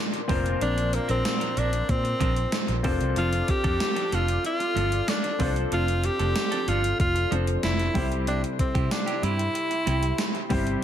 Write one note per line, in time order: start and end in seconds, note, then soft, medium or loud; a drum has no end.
0.00 0.25 C4 medium
0.00 0.25 D4 medium
0.00 0.26 D4 loud
0.00 0.25 F4 medium
0.00 0.25 A#4 medium
0.00 2.80 A#4 medium
0.00 0.26 C5 medium
0.00 2.80 D5 medium
0.00 2.80 C6 medium
0.13 muted clean electric guitar stroke medium
0.13 closed hi-hat soft
0.28 0.53 F1 medium
0.28 1.21 A#2 medium
0.28 0.45 F3 medium
0.28 2.80 C4 medium
0.28 0.44 C4 medium
0.28 2.80 D4 medium
0.28 0.44 D4 loud
0.28 2.80 F4 medium
0.28 2.81 A#4 medium
0.28 0.43 A#4 medium
0.28 2.81 C5 medium
0.28 kick medium
0.28 open hi-hat medium
0.44 0.59 F3 soft
0.44 0.60 C4 medium
0.44 0.60 D4 medium
0.44 0.60 A#4 medium
0.44 closed hi-hat soft
0.60 0.97 A#1 loud
0.60 0.80 F3 medium
0.60 0.77 C4 medium
0.60 0.76 D4 medium
0.60 0.96 D4 loud
0.60 0.75 A#4 medium
0.60 closed hi-hat medium
0.77 muted clean electric guitar stroke soft
0.77 closed hi-hat medium
0.93 1.10 A#3 loud
0.93 muted clean electric guitar stroke soft
0.93 closed hi-hat medium
1.08 1.21 A#1 medium
1.08 1.23 F3 medium
1.08 1.24 C4 medium
1.08 1.60 C4 loud
1.08 1.24 D4 medium
1.08 1.24 A#4 medium
1.08 closed hi-hat soft
1.24 muted clean electric guitar stroke soft
1.24 snare loud
1.24 closed hi-hat medium
1.24 tambourine medium
1.40 1.55 F3 medium
1.40 1.56 C4 medium
1.40 1.56 D4 medium
1.40 1.56 A#4 medium
1.40 closed hi-hat medium
1.56 1.81 A#1 medium
1.56 1.76 F3 medium
1.56 1.72 C4 medium
1.56 1.72 D4 medium
1.56 1.92 D4 medium
1.56 1.71 A#4 medium
1.56 closed hi-hat medium
1.72 muted clean electric guitar stroke soft
1.72 closed hi-hat medium
1.88 2.13 A#2 loud
1.88 2.85 C4 loud
1.88 muted clean electric guitar stroke soft
1.88 kick loud
1.88 closed hi-hat medium
2.04 muted clean electric guitar stroke soft
2.04 closed hi-hat soft
2.20 2.45 A#1 medium
2.20 2.39 F3 medium
2.20 2.36 C4 medium
2.20 2.35 D4 medium
2.20 2.35 A#4 medium
2.20 kick medium
2.20 closed hi-hat medium
2.36 muted clean electric guitar stroke medium
2.36 closed hi-hat medium
2.52 muted clean electric guitar stroke soft
2.52 snare loud
2.52 closed hi-hat loud
2.52 tambourine medium
2.68 2.81 A#1 medium
2.68 muted clean electric guitar stroke medium
2.68 closed hi-hat soft
2.83 2.96 F1 medium
2.83 3.00 F3 medium
2.83 5.35 C4 medium
2.83 3.00 C4 medium
2.83 5.35 D4 medium
2.83 2.99 D4 medium
2.83 5.36 F4 medium
2.83 7.91 A4 medium
2.83 5.36 A4 medium
2.83 2.99 A4 loud
2.83 5.36 C5 medium
2.83 7.91 D5 medium
2.83 5.37 D6 medium
2.83 kick loud
2.83 open hi-hat medium
3.00 3.12 C2 medium
3.00 3.15 F3 medium
3.00 3.16 C4 medium
3.00 3.16 D4 medium
3.00 3.15 A4 medium
3.00 closed hi-hat soft
3.16 3.41 F1 loud
3.16 3.35 F3 medium
3.16 3.32 C4 loud
3.16 3.32 D4 medium
3.16 3.52 F4 loud
3.16 3.31 A4 medium
3.16 closed hi-hat medium
3.32 muted clean electric guitar stroke soft
3.32 closed hi-hat medium
3.48 4.15 G4 loud
3.48 muted clean electric guitar stroke soft
3.48 kick medium
3.48 closed hi-hat medium
3.64 3.76 F2 medium
3.64 3.79 F3 medium
3.64 3.79 C4 medium
3.64 3.80 D4 medium
3.64 3.79 A4 medium
3.64 kick loud
3.64 closed hi-hat soft
3.80 muted clean electric guitar stroke soft
3.80 snare loud
3.80 closed hi-hat loud
3.80 tambourine medium
3.96 4.10 F3 soft
3.96 4.11 C4 medium
3.96 4.11 D4 medium
3.96 4.11 A4 medium
3.96 closed hi-hat medium
4.11 4.36 F1 medium
4.11 4.31 F3 medium
4.11 4.27 C4 medium
4.11 4.27 D4 medium
4.11 4.45 F4 loud
4.11 4.26 A4 medium
4.11 closed hi-hat medium
4.27 muted clean electric guitar stroke medium
4.27 closed hi-hat medium
4.43 5.11 F4 loud
4.43 muted clean electric guitar stroke soft
4.43 closed hi-hat medium
4.60 muted clean electric guitar stroke medium
4.60 closed hi-hat soft
4.75 5.00 G1 medium
4.75 4.95 F3 medium
4.75 4.92 C4 medium
4.75 4.91 D4 medium
4.75 4.90 A4 medium
4.75 closed hi-hat medium
4.92 muted clean electric guitar stroke soft
4.92 closed hi-hat medium
5.07 5.57 D4 loud
5.07 muted clean electric guitar stroke soft
5.07 snare loud
5.07 closed hi-hat loud
5.07 tambourine medium
5.24 muted clean electric guitar stroke soft
5.24 closed hi-hat soft
5.39 5.64 C2 medium
5.39 5.56 F3 medium
5.39 7.27 C4 medium
5.39 5.56 C4 medium
5.39 7.27 D4 medium
5.39 5.55 D4 medium
5.39 7.28 F4 medium
5.39 7.28 A4 medium
5.39 5.54 A4 medium
5.39 7.28 C5 medium
5.39 10.84 C6 medium
5.39 kick medium
5.39 open hi-hat medium
5.56 5.70 F3 medium
5.56 5.71 C4 medium
5.56 5.71 D4 medium
5.56 5.71 A4 medium
5.56 closed hi-hat soft
5.71 6.08 F1 loud
5.71 5.91 F3 medium
5.71 5.88 C4 medium
5.71 5.87 D4 medium
5.71 6.06 F4 loud
5.71 5.86 A4 loud
5.71 closed hi-hat medium
5.88 muted clean electric guitar stroke soft
5.88 closed hi-hat medium
6.04 6.70 G4 loud
6.04 muted clean electric guitar stroke soft
6.04 closed hi-hat medium
6.19 6.32 F1 loud
6.19 6.34 F3 medium
6.19 6.35 C4 medium
6.19 6.35 D4 medium
6.19 6.35 A4 medium
6.19 closed hi-hat soft
6.35 muted clean electric guitar stroke soft
6.35 snare loud
6.35 closed hi-hat loud
6.35 tambourine medium
6.51 6.66 F3 medium
6.51 6.66 C4 medium
6.51 6.67 D4 medium
6.51 6.66 A4 medium
6.51 closed hi-hat medium
6.67 6.92 G1 medium
6.67 6.87 F3 medium
6.67 6.83 C4 medium
6.67 6.83 D4 loud
6.67 7.00 F4 medium
6.67 6.82 A4 loud
6.67 closed hi-hat medium
6.83 muted clean electric guitar stroke soft
6.83 closed hi-hat medium
6.99 7.24 F1 loud
6.99 7.34 F4 loud
6.99 muted clean electric guitar stroke soft
6.99 kick loud
6.99 closed hi-hat medium
7.15 muted clean electric guitar stroke soft
7.15 closed hi-hat soft
7.31 7.55 F1 medium
7.31 7.50 F3 medium
7.31 7.95 F3 soft
7.31 7.93 C4 medium
7.31 7.47 C4 medium
7.31 7.95 D4 soft
7.31 7.47 D4 medium
7.31 7.95 A4 soft
7.31 7.46 A4 loud
7.31 7.95 C5 medium
7.31 closed hi-hat medium
7.47 muted clean electric guitar stroke soft
7.47 closed hi-hat medium
7.63 7.87 F1 medium
7.63 8.08 E4 loud
7.63 muted clean electric guitar stroke soft
7.63 snare loud
7.63 closed hi-hat loud
7.63 tambourine medium
7.79 muted clean electric guitar stroke soft
7.79 closed hi-hat soft
7.94 8.43 C2 loud
7.94 8.87 C3 medium
7.94 10.46 G3 medium
7.94 8.11 G3 medium
7.94 10.46 C4 medium
7.94 8.11 C4 medium
7.94 10.46 E4 medium
7.94 8.10 E4 medium
7.94 10.84 G4 medium
7.94 10.47 G4 medium
7.94 8.10 G4 medium
7.94 10.47 C5 medium
7.94 10.84 E5 medium
7.94 kick loud
7.94 open hi-hat medium
8.11 8.26 G3 medium
8.11 8.26 C4 medium
8.11 8.26 E4 medium
8.11 8.26 G4 medium
8.11 closed hi-hat soft
8.27 8.46 G3 medium
8.27 8.43 C4 medium
8.27 8.42 D4 medium
8.27 8.43 E4 medium
8.27 8.42 G4 medium
8.27 closed hi-hat medium
8.43 muted clean electric guitar stroke soft
8.43 closed hi-hat medium
8.59 8.93 C4 medium
8.59 muted clean electric guitar stroke soft
8.59 kick medium
8.59 closed hi-hat medium
8.75 8.87 C3 medium
8.75 8.89 G3 medium
8.75 8.90 C4 medium
8.75 8.90 E4 medium
8.75 8.90 G4 medium
8.75 kick loud
8.75 closed hi-hat soft
8.90 9.25 D4 medium
8.90 muted clean electric guitar stroke soft
8.90 snare loud
8.90 closed hi-hat loud
8.90 tambourine medium
9.06 9.21 G3 medium
9.06 9.22 C4 medium
9.06 9.22 E4 medium
9.06 9.22 G4 medium
9.06 closed hi-hat medium
9.22 9.47 G2 loud
9.22 9.42 G3 medium
9.22 9.38 C4 medium
9.22 9.38 E4 medium
9.22 10.51 E4 loud
9.22 9.37 G4 loud
9.22 closed hi-hat medium
9.39 muted clean electric guitar stroke medium
9.39 closed hi-hat medium
9.55 muted clean electric guitar stroke soft
9.55 closed hi-hat medium
9.71 muted clean electric guitar stroke soft
9.71 closed hi-hat soft
9.86 10.11 C2 medium
9.86 10.06 G3 medium
9.86 10.02 C4 medium
9.86 10.02 E4 medium
9.86 10.01 G4 medium
9.86 closed hi-hat medium
10.02 muted clean electric guitar stroke soft
10.02 closed hi-hat medium
10.18 muted clean electric guitar stroke soft
10.18 snare loud
10.18 closed hi-hat loud
10.18 tambourine medium
10.34 muted clean electric guitar stroke soft
10.34 closed hi-hat soft
10.49 10.75 G1 medium
10.49 10.84 C3 medium
10.49 10.84 G3 medium
10.49 10.66 G3 medium
10.49 10.84 C4 medium
10.49 10.66 C4 medium
10.49 10.84 E4 medium
10.49 10.65 E4 medium
10.49 10.84 G4 medium
10.49 10.65 G4 medium
10.49 10.84 C5 medium
10.49 kick medium
10.49 open hi-hat medium
10.66 10.80 G3 medium
10.66 10.81 C4 medium
10.66 10.81 E4 medium
10.66 10.81 G4 medium
10.66 closed hi-hat soft